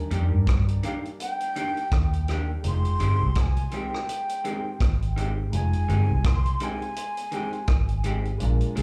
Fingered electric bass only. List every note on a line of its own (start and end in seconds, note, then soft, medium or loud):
0.11 0.30 F2 medium
0.32 0.78 G2 medium
1.92 2.56 D#2 medium
2.65 2.83 F1 loud
3.01 3.19 G1 medium
3.22 3.67 C2 medium
4.80 5.45 G#1 medium
5.53 5.72 F1 medium
5.89 6.08 G1 medium
6.10 6.56 C2 medium
7.68 8.33 G#1 medium
8.42 8.60 A#1 loud
8.78 8.82 C2 medium